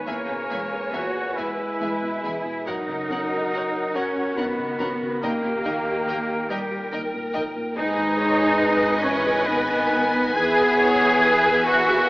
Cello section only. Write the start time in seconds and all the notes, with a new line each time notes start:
0.07 A#3
0.94 F#4
1.37 E4
2.67 D#4
3.96 C#4
4.37 B3
5.22 A#3
6.50 G3
7.77 D#4
9.02 C#4
9.46 B3
10.36 G#4
11.68 F#4